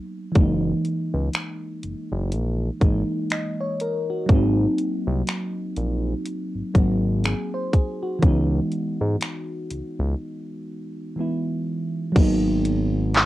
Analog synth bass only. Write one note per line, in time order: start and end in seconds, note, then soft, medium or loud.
0.36 0.73 F#1 loud
1.14 1.29 C#2 medium
1.84 1.95 F#1 soft
2.12 2.34 F#1 loud
2.33 2.70 A#1 medium
2.82 3.03 G#1 loud
4.29 4.67 G#1 loud
5.07 5.23 C2 loud
5.77 6.14 A#1 medium
6.55 6.63 G#1 soft
6.75 7.34 G#1 medium
8.23 8.60 C#2 loud
9.01 9.16 G#2 medium
9.71 9.82 C#2 soft
9.99 10.15 C#2 medium
12.16 13.26 G#1 loud